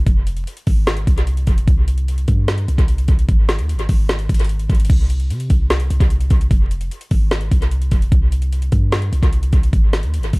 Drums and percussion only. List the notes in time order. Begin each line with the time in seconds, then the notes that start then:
0.07 kick, closed hi-hat
0.27 closed hi-hat
0.37 closed hi-hat
0.47 closed hi-hat
0.57 closed hi-hat
0.67 kick, open hi-hat
0.87 snare, closed hi-hat
0.97 closed hi-hat
1.07 kick, closed hi-hat
1.18 closed hi-hat
1.27 closed hi-hat
1.37 closed hi-hat
1.47 kick, closed hi-hat
1.58 closed hi-hat
1.68 kick, closed hi-hat
1.88 closed hi-hat
1.98 closed hi-hat
2.08 closed hi-hat
2.18 closed hi-hat
2.28 kick, closed hi-hat
2.48 snare, closed hi-hat
2.58 closed hi-hat
2.68 closed hi-hat
2.78 kick, closed hi-hat
2.88 closed hi-hat
2.98 closed hi-hat
3.08 kick, closed hi-hat
3.19 closed hi-hat
3.29 kick, closed hi-hat
3.49 snare, closed hi-hat
3.59 closed hi-hat
3.69 closed hi-hat
3.79 closed hi-hat
3.89 kick, open hi-hat
4.09 snare, closed hi-hat
4.19 closed hi-hat
4.29 kick, closed hi-hat
4.34 closed hi-hat
4.39 closed hi-hat
4.44 closed hi-hat
4.49 closed hi-hat
4.59 closed hi-hat
4.70 kick, closed hi-hat
4.75 closed hi-hat
4.80 closed hi-hat
4.85 closed hi-hat
4.90 kick, closed hi-hat, crash
5.10 closed hi-hat
5.20 closed hi-hat
5.30 closed hi-hat
5.40 closed hi-hat
5.50 kick, closed hi-hat
5.70 snare, closed hi-hat
5.80 closed hi-hat
5.90 closed hi-hat
6.00 kick, closed hi-hat
6.10 closed hi-hat
6.20 closed hi-hat
6.30 kick, closed hi-hat
6.41 closed hi-hat
6.51 kick, closed hi-hat
6.71 closed hi-hat
6.81 closed hi-hat
6.91 closed hi-hat
7.01 closed hi-hat
7.11 kick, open hi-hat
7.31 snare, closed hi-hat
7.41 closed hi-hat
7.51 kick, closed hi-hat
7.62 closed hi-hat
7.71 closed hi-hat
7.82 closed hi-hat
7.91 kick, closed hi-hat
8.02 closed hi-hat
8.12 kick, closed hi-hat
8.32 closed hi-hat
8.42 closed hi-hat
8.53 closed hi-hat
8.62 closed hi-hat
8.72 kick, closed hi-hat
8.92 snare, closed hi-hat
9.02 closed hi-hat
9.13 closed hi-hat
9.23 kick, closed hi-hat
9.33 closed hi-hat
9.43 closed hi-hat
9.53 kick, closed hi-hat
9.63 closed hi-hat
9.73 kick, closed hi-hat
9.93 snare, closed hi-hat
10.03 closed hi-hat
10.14 closed hi-hat
10.23 closed hi-hat
10.33 kick, open hi-hat